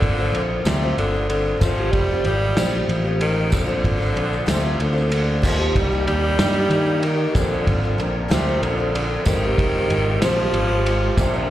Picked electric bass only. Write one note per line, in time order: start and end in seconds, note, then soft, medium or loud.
0.02 0.29 G#1 loud
0.32 0.60 A#1 medium
0.65 0.93 D2 medium
0.97 1.53 G1 medium
1.61 1.89 G#1 loud
1.93 2.21 F1 loud
2.24 2.52 G#1 loud
2.57 2.84 A#1 medium
2.88 3.53 A1 medium
3.53 3.80 A#1 loud
3.84 4.12 G#1 medium
4.16 4.43 A#1 medium
4.47 4.75 D2 medium
4.80 5.43 D2 medium
5.43 5.71 D#2 loud
5.76 6.03 C2 loud
6.07 6.35 D#2 medium
6.39 6.67 G2 medium
6.70 7.26 D#3 medium
7.35 7.63 A#1 medium
7.67 7.95 G#1 loud
7.98 8.26 A#1 loud
8.31 8.58 D2 medium
8.62 9.17 A#1 medium
9.27 9.54 G#1 loud
9.58 9.86 F1 loud
9.89 10.17 G#1 medium
10.21 10.49 A#1 medium
10.53 11.09 G#1 medium
11.18 11.45 A#1 loud